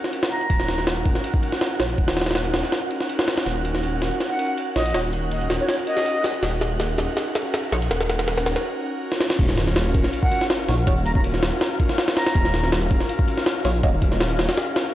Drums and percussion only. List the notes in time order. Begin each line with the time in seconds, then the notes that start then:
0.04 snare
0.13 ride
0.23 snare
0.32 ride
0.41 ride
0.50 kick, ride
0.60 snare
0.68 snare, ride
0.78 snare
0.87 snare, ride
1.06 kick, ride
1.15 snare
1.24 ride
1.34 kick
1.43 ride
1.52 snare
1.61 snare, ride
1.80 snare, ride
1.90 ride
1.98 kick, ride
2.08 snare, ride
2.17 snare, ride
2.21 snare, ride
2.26 snare, ride
2.31 snare, ride
2.35 snare, ride
2.45 ride
2.54 snare, ride
2.63 snare
2.72 snare, ride
2.91 ride
3.01 snare
3.09 ride
3.19 snare
3.28 snare, ride
3.38 snare, ride
3.46 snare, ride
3.65 ride
3.75 snare
3.83 ride
4.02 snare, ride
4.20 snare, ride
4.39 ride
4.57 ride
4.76 snare, ride
4.81 ride
4.86 ride
4.90 ride
4.94 snare, ride
5.13 ride
5.31 ride
5.41 ride
5.50 snare, ride
5.69 snare, ride
5.87 ride
5.97 snare
6.06 ride
6.24 snare, ride
6.34 ride
6.43 snare, ride
6.61 snare, ride
6.80 snare, ride
6.98 snare, ride
7.17 snare, ride
7.35 snare, ride
7.54 snare, ride
7.72 snare, ride
7.82 ride
7.91 snare, ride
8.01 snare
8.10 snare, ride
8.19 snare, ride
8.28 snare, ride
8.38 snare, ride
8.46 snare, ride
8.56 snare
9.12 snare
9.20 snare
9.30 snare
9.39 kick, crash, ride
9.49 snare
9.58 snare, ride
9.67 snare
9.76 snare, ride
9.95 kick, ride
10.04 snare
10.13 ride
10.23 kick
10.31 ride
10.41 snare
10.50 snare, ride
10.69 snare, open hi-hat
10.87 kick, ride
11.06 ride
11.15 kick
11.24 ride
11.34 snare
11.43 snare, ride
11.61 snare, ride
11.80 kick, ride
11.89 snare
11.98 snare, ride
12.08 snare, ride
12.17 snare, ride
12.26 snare, ride
12.35 kick, ride
12.45 snare
12.54 snare, ride
12.64 snare
12.72 snare, ride
12.91 kick, ride
13.00 snare
13.09 ride
13.19 kick
13.28 ride
13.38 snare
13.46 snare, ride
13.65 snare, open hi-hat
13.83 kick, ride
14.02 kick, ride
14.12 snare
14.20 snare, ride
14.30 ride
14.39 snare, ride
14.49 snare, ride
14.57 snare, ride
14.76 snare, ride